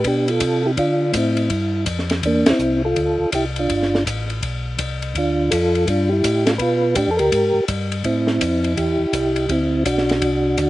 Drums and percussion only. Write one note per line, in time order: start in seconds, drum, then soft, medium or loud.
0.04 kick soft
0.04 ride medium
0.28 ride medium
0.40 kick soft
0.40 hi-hat pedal medium
0.40 ride medium
0.77 kick soft
0.77 ride medium
1.14 kick soft
1.14 hi-hat pedal medium
1.14 ride medium
1.37 ride soft
1.50 kick soft
1.50 ride medium
1.86 kick soft
1.86 hi-hat pedal medium
1.86 ride medium
1.99 snare soft
2.10 snare soft
2.10 ride medium
2.23 kick soft
2.23 ride medium
2.46 snare medium
2.46 ride medium
2.59 hi-hat pedal medium
2.96 kick soft
2.96 ride medium
3.32 kick soft
3.32 hi-hat pedal medium
3.32 ride medium
3.56 ride soft
3.70 kick soft
3.70 ride medium
3.82 snare soft
3.95 snare soft
4.06 kick soft
4.06 hi-hat pedal medium
4.06 ride medium
4.30 ride soft
4.43 kick soft
4.43 ride medium
4.79 kick soft
4.79 hi-hat pedal medium
4.79 ride medium
5.02 ride soft
5.15 kick soft
5.15 ride medium
5.52 kick soft
5.52 hi-hat pedal medium
5.52 ride medium
5.75 ride soft
5.88 kick soft
5.88 ride medium
6.24 kick soft
6.24 hi-hat pedal medium
6.24 ride medium
6.47 snare medium
6.47 ride medium
6.59 kick soft
6.59 ride medium
6.95 kick soft
6.95 hi-hat pedal medium
6.95 ride medium
7.19 ride soft
7.32 kick soft
7.32 ride medium
7.68 kick soft
7.68 hi-hat pedal medium
7.68 ride medium
7.92 ride soft
8.04 kick soft
8.04 ride medium
8.27 snare soft
8.41 kick soft
8.41 hi-hat pedal medium
8.41 ride medium
8.64 ride soft
8.77 kick soft
8.77 ride medium
9.13 kick soft
9.13 hi-hat pedal medium
9.13 ride medium
9.36 ride medium
9.49 kick soft
9.49 ride medium
9.86 kick soft
9.86 hi-hat pedal medium
9.86 ride medium
9.98 snare soft
10.09 snare soft
10.09 ride soft
10.22 kick soft
10.22 ride medium
10.58 kick soft
10.58 hi-hat pedal medium
10.58 ride medium